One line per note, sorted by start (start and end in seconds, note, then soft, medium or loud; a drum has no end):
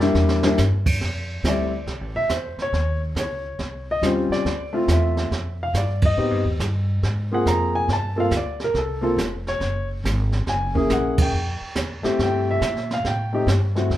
0.00 0.14 F2 loud
0.00 0.41 G3 medium
0.00 0.41 A#3 medium
0.00 0.41 D4 medium
0.00 0.41 E4 medium
0.00 snare soft
0.15 0.57 E2 medium
0.15 snare medium
0.29 snare medium
0.43 0.57 G3 medium
0.43 0.58 A#3 medium
0.43 0.58 D4 medium
0.43 0.58 E4 medium
0.43 snare medium
0.57 1.00 G2 medium
0.57 snare medium
0.57 hi-hat pedal medium
0.86 kick medium
0.86 crash medium
1.01 1.43 F2 medium
1.01 brush sweep soft
1.01 kick soft
1.01 snare soft
1.43 1.85 D2 medium
1.43 1.70 G3 medium
1.43 1.71 A3 medium
1.43 1.71 C4 medium
1.43 1.71 E4 medium
1.43 kick soft
1.43 snare medium
1.43 hi-hat pedal soft
1.48 2.14 D5 medium
1.86 2.01 C2 medium
1.86 brush sweep soft
1.86 kick soft
1.86 snare soft
2.01 2.14 A1 medium
2.15 2.29 F1 medium
2.15 2.30 E5 loud
2.29 2.56 E2 medium
2.29 2.59 C5 medium
2.29 kick soft
2.29 snare medium
2.29 hi-hat pedal medium
2.57 muted upright bass stroke soft
2.57 snare soft
2.62 3.01 C#5 medium
2.73 3.15 D#2 medium
2.73 brush sweep soft
2.73 kick soft
2.73 snare soft
3.15 3.57 C#2 medium
3.15 kick soft
3.15 snare medium
3.15 hi-hat pedal medium
3.19 3.85 C#5 medium
3.59 4.01 C2 medium
3.59 brush sweep soft
3.59 kick soft
3.59 snare soft
3.91 4.04 D#5 medium
4.02 4.28 D#2 medium
4.02 4.45 G3 medium
4.02 4.46 C4 medium
4.02 4.46 C#4 medium
4.02 4.46 F4 medium
4.02 4.32 C5 medium
4.02 kick soft
4.02 snare medium
4.02 hi-hat pedal medium
4.29 4.71 D5 medium
4.29 muted upright bass stroke soft
4.29 snare soft
4.45 4.87 D2 medium
4.45 brush sweep soft
4.45 kick soft
4.45 snare soft
4.73 5.28 A3 medium
4.73 5.28 C4 medium
4.73 5.28 E4 medium
4.73 5.29 F4 medium
4.88 5.30 E2 medium
4.88 5.57 E5 medium
4.88 kick soft
4.88 snare medium
4.88 hi-hat pedal medium
5.17 snare soft
5.31 5.73 F2 medium
5.31 brush sweep soft
5.31 kick soft
5.31 snare soft
5.63 5.75 F5 medium
5.74 6.16 G2 medium
5.74 6.03 D5 medium
5.74 kick soft
5.74 snare medium
5.74 hi-hat pedal soft
6.02 6.44 D#5 medium
6.02 kick medium
6.02 ride medium
6.17 6.31 A2 medium
6.17 6.43 B3 medium
6.17 6.43 C4 medium
6.17 6.43 D#4 medium
6.17 6.43 G4 medium
6.17 brush sweep soft
6.31 6.44 G2 medium
6.45 6.59 D#2 medium
6.60 7.02 G2 medium
6.60 kick soft
6.60 snare medium
6.60 hi-hat pedal medium
7.03 7.45 G#2 medium
7.03 brush sweep soft
7.03 kick soft
7.03 snare soft
7.32 7.86 A#3 medium
7.32 7.86 C4 medium
7.32 7.87 F4 medium
7.32 7.87 G#4 medium
7.32 7.47 F#5 medium
7.46 7.88 F2 medium
7.46 7.74 A#5 medium
7.46 kick soft
7.46 snare medium
7.46 hi-hat pedal medium
7.75 7.89 G#5 medium
7.88 8.30 G2 medium
7.88 brush sweep soft
7.88 kick soft
7.88 snare soft
7.93 8.19 A5 medium
8.16 8.30 A#3 medium
8.16 8.30 C4 medium
8.16 8.30 F4 medium
8.16 8.31 A4 medium
8.16 8.33 F5 medium
8.31 8.73 D2 medium
8.31 kick soft
8.31 snare medium
8.31 hi-hat pedal medium
8.37 8.62 D5 medium
8.60 snare soft
8.64 8.77 A#4 medium
8.74 9.16 C2 medium
8.74 brush sweep soft
8.74 kick soft
8.74 snare soft
8.78 9.02 A4 medium
9.01 9.15 A#3 medium
9.01 9.16 C4 medium
9.01 9.16 F4 medium
9.01 9.16 A4 medium
9.17 9.59 F1 medium
9.17 kick soft
9.17 snare medium
9.17 hi-hat pedal medium
9.47 9.87 C#5 medium
9.47 snare soft
9.60 10.02 F#1 medium
9.60 brush sweep medium
9.60 kick soft
9.60 snare soft
10.04 10.45 G#1 medium
10.04 kick soft
10.04 snare medium
10.04 hi-hat pedal medium
10.32 snare soft
10.46 10.88 F#1 medium
10.46 10.88 G#5 medium
10.46 brush sweep soft
10.46 kick soft
10.46 snare soft
10.75 11.30 A#3 medium
10.75 11.30 C#4 medium
10.75 11.30 E4 medium
10.75 11.30 G#4 medium
10.75 kick soft
10.90 11.31 A#1 medium
10.90 11.19 F#5 medium
10.90 kick soft
10.90 snare medium
10.90 hi-hat pedal medium
11.18 kick medium
11.18 ride medium
11.22 11.74 G5 medium
11.32 11.59 F2 medium
11.32 brush sweep soft
11.61 muted upright bass stroke soft
11.75 12.02 E2 medium
11.75 kick soft
11.75 snare medium
11.75 hi-hat pedal medium
12.03 12.58 A3 medium
12.03 12.59 C4 medium
12.03 12.59 E4 medium
12.03 12.59 G4 medium
12.03 muted upright bass stroke soft
12.03 snare soft
12.19 12.60 G2 medium
12.19 brush sweep soft
12.19 kick soft
12.19 snare soft
12.23 12.48 G5 medium
12.51 12.89 E5 medium
12.61 13.03 A#2 medium
12.61 kick soft
12.61 snare medium
12.61 hi-hat pedal medium
12.76 snare soft
12.90 13.06 F5 medium
12.90 snare soft
13.04 13.46 A2 medium
13.04 13.46 G5 medium
13.04 brush sweep soft
13.04 kick soft
13.04 snare soft
13.33 13.46 A3 medium
13.33 13.46 C4 medium
13.33 13.47 D#4 medium
13.33 13.47 G4 medium
13.47 13.89 G2 medium
13.47 kick soft
13.47 snare medium
13.47 hi-hat pedal soft
13.75 13.89 A3 medium
13.75 13.89 C4 medium
13.75 13.89 E4 medium
13.75 13.90 F#4 medium
13.75 snare soft
13.90 13.97 D2 medium
13.90 brush sweep medium
13.90 kick soft
13.90 snare soft